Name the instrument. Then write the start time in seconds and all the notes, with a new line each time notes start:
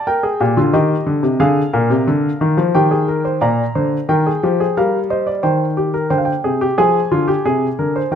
grand piano
0.07 A#4 G5
0.23 G#4
0.40 A#2 G4
0.57 D3 F4
0.73 D#3 G4 D#5
1.07 D3
1.23 C3
1.40 D3 G#4 F5
1.73 A#2 A#4
1.90 C3
2.07 D3
2.41 D#3
2.57 F3
2.75 D#3 G4 G5
2.91 G#4
3.08 A#4
3.25 C5
3.41 A#2 D5 A#5
3.75 D3 C5
4.09 D#3 A#4 G5
4.26 G#4
4.43 F3 G4
4.60 G#4
4.77 G3 A#4 F5
5.10 C5 D#5
5.27 D5
5.43 D#3 C5 G5
5.77 G4
5.94 A#4
6.10 D3 C5 G5
6.18 F5
6.25 G5
6.44 C3 G#4
6.61 G4
6.78 F3 G#4 G#5
7.12 D3 F4
7.28 G4
7.45 C3 G#4
7.79 D3 A#4
7.96 C5
8.12 D#3 A#4 G5